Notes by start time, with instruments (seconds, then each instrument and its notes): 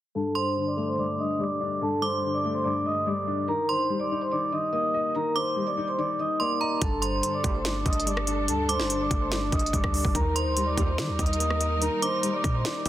0.15 grand piano G2, vibraphone A4 A5
0.35 grand piano G2, vibraphone C5 C6, synth bell C6
0.57 grand piano D3
0.67 vibraphone D5 D6
0.77 grand piano A3
0.88 vibraphone C5 C6
0.98 grand piano G2, vibraphone D5 D6
1.19 grand piano G2, vibraphone D#5 D#6
1.39 grand piano G3, vibraphone D5 D6
1.60 grand piano D4
1.82 grand piano G2, vibraphone A4 A5
2.02 grand piano G2, vibraphone C5 C6, synth bell D6
2.23 grand piano D3
2.34 vibraphone D5 D6
2.44 grand piano A3
2.54 vibraphone C5 C6
2.64 grand piano G2, vibraphone D5 D6
2.86 grand piano G2, vibraphone D#5 D#6
3.06 grand piano G3, vibraphone D5 D6
3.27 grand piano D4
3.48 grand piano D#3, vibraphone A#4 A#5
3.69 grand piano D#3, vibraphone C5 C6, synth bell C6
3.90 grand piano G3
4.00 vibraphone D5 D6
4.11 grand piano D#4
4.21 vibraphone C5 C6
4.32 grand piano D#3, vibraphone D5 D6
4.52 grand piano D#3, vibraphone D#5 D#6
4.72 grand piano A#3, vibraphone D#5 D#6
4.94 grand piano D#5
5.15 grand piano D#3, vibraphone A#4 A#5
5.36 grand piano D#3, vibraphone C5 C6, synth bell D6
5.56 grand piano G3
5.67 vibraphone D5 D6
5.77 grand piano D#4
5.88 vibraphone C5 C6
5.98 grand piano D#3, vibraphone D5 D6
6.19 grand piano D#3, vibraphone D#5 D#6
6.40 grand piano A#3, vibraphone D5 D6, synth bell C6
6.61 grand piano D#5, synth bell A#5
6.82 808-style bass G1, grand piano G2, string section G3 D4 A4, vibraphone A4 A5, kick, closed hi-hat
7.02 grand piano G2, vibraphone C5 C6, synth bell C6, closed hi-hat
7.23 grand piano D3, closed hi-hat
7.34 vibraphone D5 D6
7.43 808-style bass G1, brass ensemble D2 A2 G3, grand piano A3, kick, closed hi-hat
7.55 vibraphone C5 C6
7.65 grand piano G2, vibraphone D5 D6, snare, closed hi-hat
7.86 808-style bass G1, grand piano G2, vibraphone D#5 D#6, kick, closed hi-hat
7.93 closed hi-hat
8.00 closed hi-hat
8.06 grand piano G3, vibraphone D5 D6, closed hi-hat
8.17 cross-stick
8.27 grand piano D4, closed hi-hat
8.48 808-style bass D2, grand piano G2, vibraphone A4 A5, closed hi-hat
8.69 grand piano G2, vibraphone C5 C6, synth bell D6, closed hi-hat
8.79 808-style bass G1, snare
8.90 grand piano D3, closed hi-hat
9.01 vibraphone D5 D6
9.11 808-style bass G1, grand piano A3, kick, closed hi-hat
9.21 vibraphone C5 C6
9.31 grand piano G2, vibraphone D5 D6, snare, closed hi-hat
9.52 808-style bass G1, grand piano G2, vibraphone D#5 D#6, kick, closed hi-hat
9.59 closed hi-hat
9.66 closed hi-hat
9.73 808-style bass G1, grand piano G3, vibraphone D5 D6, kick, closed hi-hat
9.84 808-style bass D2, kick, cross-stick
9.94 grand piano D4, open hi-hat
10.05 808-style bass G1, kick
10.15 808-style bass D#2, grand piano D#3, string section D#4 A#4, vibraphone A#4 A#5, kick, closed hi-hat
10.35 grand piano D#3, vibraphone C5 C6, synth bell C6, closed hi-hat
10.46 808-style bass D2
10.56 grand piano G3, closed hi-hat
10.62 808-style bass D#2
10.66 vibraphone D5 D6
10.77 brass ensemble D#2 A#2 G3, 808-style bass D#2, grand piano D#4, kick, closed hi-hat
10.88 vibraphone C5 C6
10.98 808-style bass D#3, grand piano D#3, vibraphone D5 D6, snare, closed hi-hat
11.09 808-style bass D#2
11.19 808-style bass D#2, grand piano D#3, vibraphone D#5 D#6, kick, closed hi-hat
11.26 closed hi-hat
11.33 closed hi-hat
11.39 grand piano A#3, vibraphone D#5 D#6, closed hi-hat
11.50 cross-stick
11.61 grand piano D#5, closed hi-hat
11.81 grand piano D#3, vibraphone A#4 A#5, closed hi-hat
12.02 grand piano D#3, vibraphone C5 C6, synth bell D6, closed hi-hat
12.23 grand piano G3, closed hi-hat
12.33 vibraphone D5 D6
12.44 808-style bass A#2, grand piano D#4, kick, cross-stick, closed hi-hat
12.54 vibraphone C5 C6
12.65 grand piano D#3, vibraphone D5 D6, snare, closed hi-hat
12.85 808-style bass D#2, grand piano D#3, kick, closed hi-hat